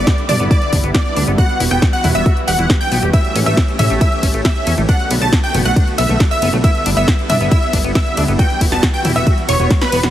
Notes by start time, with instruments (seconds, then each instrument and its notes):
Already playing: analog synth pad D3 G3 B3 E4, supersaw synth D5, synth pluck D6
0.07 acid bass E4, kick, snare, closed hi-hat
0.18 closed hi-hat
0.29 analog synth bass G2, acid bass D4, supersaw synth D5, synth pluck D6, open hi-hat, mid tom
0.40 analog synth bass G1, acid bass B3
0.51 acid bass E4, supersaw synth D5, synth pluck D6, kick, closed hi-hat
0.62 closed hi-hat
0.72 analog synth bass G1, acid bass D4, kick, open hi-hat
0.83 analog synth bass G1, acid bass B3, closed hi-hat
0.94 acid bass E4, supersaw synth D5, synth pluck D6, kick, snare, closed hi-hat
1.06 closed hi-hat
1.16 analog synth bass D2, acid bass D4, open hi-hat
1.27 analog synth bass G1, acid bass B3, closed hi-hat
1.38 analog synth pad E3 F#4, acid bass F#4, supersaw synth F#5, synth pluck F#6, kick, closed hi-hat
1.49 closed hi-hat
1.60 analog synth bass E1, acid bass E4, open hi-hat
1.71 analog synth bass E1, acid bass B3, supersaw synth G5, synth pluck G6, closed hi-hat
1.82 acid bass F#4, kick, snare, closed hi-hat
1.93 supersaw synth F#5, synth pluck F#6, closed hi-hat
2.04 analog synth bass E2, acid bass E4, open hi-hat, mid tom
2.15 analog synth bass E1, acid bass B3, supersaw synth E5, synth pluck E6, closed hi-hat
2.26 acid bass F#4, kick, closed hi-hat
2.37 closed hi-hat
2.48 analog synth bass E1, acid bass G4, supersaw synth F#5, synth pluck F#6, open hi-hat
2.59 analog synth bass E1, acid bass E4, closed hi-hat
2.70 acid bass G4, kick, snare, closed hi-hat
2.81 supersaw synth G5, synth pluck G6, closed hi-hat
2.92 analog synth bass B1, acid bass B3, open hi-hat
3.03 analog synth bass E1, acid bass G4, closed hi-hat
3.13 analog synth pad A3 C#4 G4, acid bass E4, supersaw synth E5, synth pluck E6, kick, closed hi-hat, ride
3.25 closed hi-hat
3.35 analog synth bass A1, acid bass C#4, open hi-hat, ride
3.46 analog synth bass A1, acid bass A3, supersaw synth E5, synth pluck E6, closed hi-hat
3.57 acid bass E4, kick, snare, closed hi-hat, ride
3.68 closed hi-hat
3.79 analog synth bass A2, acid bass C#4, supersaw synth E5, synth pluck E6, open hi-hat, mid tom, ride
3.90 analog synth bass A1, acid bass A3, closed hi-hat
4.01 acid bass E4, supersaw synth E5, synth pluck E6, kick, closed hi-hat, ride
4.12 closed hi-hat
4.23 analog synth bass A1, acid bass C#4, kick, open hi-hat, ride
4.34 analog synth bass A1, acid bass A3, closed hi-hat
4.45 acid bass E4, supersaw synth E5, synth pluck E6, kick, snare, closed hi-hat, ride
4.56 closed hi-hat
4.67 analog synth bass E2, acid bass C#4, open hi-hat, ride
4.78 analog synth bass A1, acid bass A3, closed hi-hat
4.88 analog synth pad D3 A3 B3 F#4, acid bass D4, supersaw synth F#5, synth pluck F#6, kick, closed hi-hat, ride
5.00 closed hi-hat
5.10 analog synth bass B1, acid bass B3, open hi-hat, ride
5.21 analog synth bass B1, acid bass A3, supersaw synth A5, synth pluck A6, closed hi-hat
5.32 acid bass D4, kick, snare, closed hi-hat, ride
5.44 supersaw synth G5, synth pluck G6, closed hi-hat
5.54 analog synth bass F#1, acid bass B3, open hi-hat, mid tom, ride
5.65 analog synth bass B1, acid bass A3, supersaw synth F#5, synth pluck F#6, closed hi-hat
5.76 acid bass D4, kick, closed hi-hat, ride
5.87 closed hi-hat
5.98 analog synth bass B1, acid bass B3, supersaw synth E5, synth pluck E6, open hi-hat, ride
6.09 analog synth bass B1, acid bass A3, closed hi-hat
6.20 acid bass D4, kick, snare, closed hi-hat, ride
6.31 supersaw synth E5, synth pluck E6, closed hi-hat
6.42 analog synth bass F#1, acid bass B3, open hi-hat, ride
6.53 analog synth bass B1, acid bass A3, closed hi-hat
6.64 analog synth pad G3 E4, acid bass E4, supersaw synth E5, synth pluck E6, kick, closed hi-hat, ride
6.75 closed hi-hat
6.86 analog synth bass G1, acid bass D4, open hi-hat, ride
6.97 analog synth bass G1, acid bass B3, supersaw synth E5, synth pluck E6
7.08 acid bass E4, kick, snare, closed hi-hat, ride
7.19 closed hi-hat
7.30 analog synth bass G2, acid bass D4, supersaw synth E5, synth pluck E6, open hi-hat, mid tom, ride
7.41 analog synth bass G1, acid bass B3, closed hi-hat
7.51 acid bass E4, supersaw synth E5, synth pluck E6, kick, closed hi-hat, ride
7.62 closed hi-hat
7.73 analog synth bass G1, acid bass D4, kick, open hi-hat, ride
7.84 analog synth bass G1, acid bass B3, closed hi-hat
7.95 acid bass E4, supersaw synth E5, synth pluck E6, kick, snare, closed hi-hat, ride
8.06 closed hi-hat
8.17 analog synth bass D2, acid bass D4, open hi-hat, ride
8.28 analog synth bass G1, acid bass B3, closed hi-hat
8.39 analog synth pad E3 F#4, acid bass F#4, supersaw synth G5, synth pluck G6, kick, closed hi-hat, ride
8.50 closed hi-hat
8.61 analog synth bass E1, acid bass E4, kick, open hi-hat, ride
8.72 analog synth bass E1, acid bass B3, supersaw synth A5, synth pluck A6, snare, closed hi-hat
8.83 acid bass F#4, kick, snare, closed hi-hat, ride
8.94 supersaw synth G5, synth pluck G6, closed hi-hat
9.05 analog synth bass E2, acid bass E4, open hi-hat, mid tom, ride
9.16 analog synth bass E1, acid bass B3, supersaw synth E5, synth pluck E6, closed hi-hat
9.27 acid bass F#4, kick, closed hi-hat, ride
9.38 closed hi-hat
9.49 analog synth bass E1, acid bass B3, supersaw synth C#5, synth pluck C#6, open hi-hat, ride
9.60 analog synth bass E1, acid bass B3, closed hi-hat
9.71 acid bass C4, kick, snare, closed hi-hat, ride
9.81 supersaw synth B4, synth pluck B5, snare, closed hi-hat
9.92 analog synth bass E1, acid bass B3, open hi-hat, ride
10.03 analog synth bass E1, acid bass F#4, snare, closed hi-hat